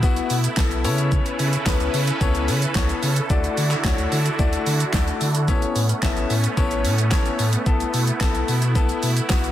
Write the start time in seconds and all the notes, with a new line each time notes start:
Already playing: A3 B3 E4
0.03 B1 B3 E4 F#4, kick, tambourine, shaker
0.16 closed hi-hat, shaker
0.30 B2, open hi-hat, tambourine, shaker
0.44 closed hi-hat, shaker
0.57 B1 B3 E4 A4 A5, kick, snare, clap, tambourine, shaker
0.71 closed hi-hat, shaker
0.84 C#3 B3 C#4 E4 A4 B4 C#5 E5, open hi-hat, tambourine, shaker
0.98 closed hi-hat, shaker
1.12 kick, shaker
1.26 closed hi-hat, shaker
1.39 C#3, open hi-hat, shaker
1.53 closed hi-hat, shaker
1.66 C#2 B3 C#4 E4 A4 B4, kick, snare, clap, tambourine, shaker
1.80 C#2, closed hi-hat, shaker
1.94 C#3, open hi-hat, tambourine, shaker
2.07 closed hi-hat, shaker
2.21 C#2 B3 C#4 E4 A4 C#5, kick, tambourine, shaker
2.35 closed hi-hat, shaker
2.48 C#3, open hi-hat, tambourine, shaker
2.62 closed hi-hat, shaker
2.75 C#2 B3 C#4 E4 A4 C#5, kick, snare, clap, tambourine, shaker
2.89 closed hi-hat, shaker
3.03 C#3, open hi-hat, tambourine, shaker
3.16 closed hi-hat, shaker
3.30 D2 D3 A3 D4 E4 F#4 D5, kick, tambourine, shaker
3.44 closed hi-hat, shaker
3.57 D3, open hi-hat, shaker
3.71 clap, closed hi-hat, shaker
3.84 D2 A3 D4 E4 F#4 C#5, kick, snare, clap, tambourine, shaker
3.98 D2, closed hi-hat, shaker
4.12 D3, open hi-hat, tambourine, shaker
4.26 closed hi-hat, shaker
4.39 D2 A3 D4 E4 F#4 D5, kick, tambourine, shaker
4.53 closed hi-hat, shaker
4.66 D3, open hi-hat, tambourine, shaker
4.80 closed hi-hat, shaker
4.93 D2 A3 D4 E4 F#4 D5, kick, snare, clap, tambourine, shaker
5.08 closed hi-hat, shaker
5.21 D3, open hi-hat, tambourine, shaker
5.35 closed hi-hat, shaker
5.48 A1 A3 B3 C#4 E4 A4 C#5, kick, tambourine, shaker
5.62 closed hi-hat, shaker
5.76 A2, open hi-hat, shaker
5.89 closed hi-hat, shaker
6.02 A1 B3 C#4 E4 A4 E5, kick, snare, clap, tambourine, shaker
6.16 A1, closed hi-hat, shaker
6.30 A2, open hi-hat, tambourine, shaker
6.44 closed hi-hat, shaker
6.57 A1 B3 C#4 E4 A4 C#5, kick, tambourine, shaker
6.71 closed hi-hat, shaker
6.85 A2, open hi-hat, tambourine, shaker
6.98 closed hi-hat, shaker
7.11 A1 B3 C#4 E4 A4 C#5, kick, snare, clap, tambourine, shaker
7.26 closed hi-hat, shaker
7.39 A2, open hi-hat, tambourine, shaker
7.53 closed hi-hat, shaker
7.66 B1 B3 E4 A4, kick, shaker
7.80 closed hi-hat, shaker
7.94 B2, open hi-hat, tambourine, shaker
8.07 closed hi-hat, shaker
8.20 B1 B3 E4 A4, kick, snare, clap, tambourine, shaker
8.35 B1, closed hi-hat, shaker
8.48 B2, open hi-hat, tambourine, shaker
8.62 closed hi-hat, shaker
8.75 B1 B3 E4 A4, kick, tambourine, shaker
8.89 closed hi-hat, shaker
9.03 B2, open hi-hat, tambourine, shaker
9.17 closed hi-hat, shaker
9.29 B1 B3 E4 F#4, kick, snare, clap, tambourine, shaker
9.44 closed hi-hat, shaker